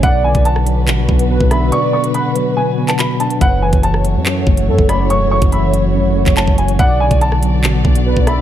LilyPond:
<<
  \new Staff \with { instrumentName = "Upright piano" } { \time 4/4 \key b \dorian \tempo 4 = 142 fis''8 gis''8 a''2~ a''8 b''8 | cis'''8 cis'''8 b''4 gis''8. a''16 b''8 a''8 | fis''8 gis''8 a''2~ a''8 b''8 | cis'''8 cis'''8 b''2 a''8 gis''8 |
fis''8 gis''8 a''2~ a''8 b''8 | }
  \new Staff \with { instrumentName = "Soft synth lead" } { \time 4/4 \key b \dorian d''4 r2 b'8 e''8 | d''4 fis''8 b'4. r4 | b'4 r2 a'8 d''8 | cis''4 e''8 cis''2~ cis''8 |
d''4 r2 b'8 e''8 | }
  \new Staff \with { instrumentName = "String section" } { \time 4/4 \key b \dorian << { <d b b'>1~ | <d b b'>1 | <e a cis''>1~ | <e a cis''>1 |
<d b d''>1 | } \\ { fis'1~ | fis'1 | fis'1~ | fis'1~ |
fis'1 | } >> }
  \new Staff \with { instrumentName = "Tine electric piano" } { \clef bass \time 4/4 \key b \dorian b,8 d4 fis8 b,8 b8 b,8 d'8 | b,8 d4 fis8 b,8 b8 b,8 d'8 | fis,8 e4 fis8 fis,8 a8 fis,8 cis'8 | fis,8 e4 fis8 fis,8 a8 fis,8 cis'8 |
b,8 d4 fis8 b,8 b8 b,8 d'8 | }
  \new Staff \with { instrumentName = "808-style bass" } { \clef bass \time 4/4 \key b \dorian b,,8. b,,4~ b,,16 a,,16 b,,16 b,,8. b,,8. | r1 | fis,,8. fis,,4 fis,8. fis,,8 fis,16 fis,,8. | e,,16. fis,,16. fis,,4~ fis,,16 gis,,16. fis,,16. fis,,8 fis,,8. |
b,,8. b,,4~ b,,16 a,,16 b,,16 b,,8. b,,8. | }
  \new DrumStaff \with { instrumentName = "Drums" } \drummode { \time 4/4 <hh bd>8. <hh bd>16 hh16 ss16 hh8 <hc hh>8 bd16 hh16 r16 bd16 <hh ss>8 | hh8. hh16 hh8 hh8 r8. <hc hh>16 <hc hh>8 hh16 hh16 | <hh bd>8. <hh bd>16 hh16 ss16 hh8 <hc hh>8 bd16 hh16 r16 bd16 <hh ss>8 | hh8. <hh bd>16 hh8 hh8 r8. <hc hh bd>16 <hc hh>16 bd16 hh16 hh16 |
<hh bd>8. <hh bd>16 hh16 ss16 hh8 <hc hh>8 bd16 hh16 r16 bd16 <hh ss>8 | }
>>